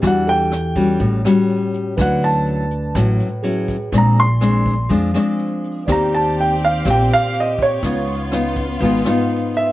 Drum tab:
HH |xxxxxxxx|xxxxxxxx|xxxxxxxx|xxxxxxxx|
SD |r-r--r--|r---r---|r-r--r--|r---r---|
BD |o--oo---|o---o--o|o--oo---|o---o--o|

HH |xxxxxxxx|
SD |r-r--r--|
BD |o--oo---|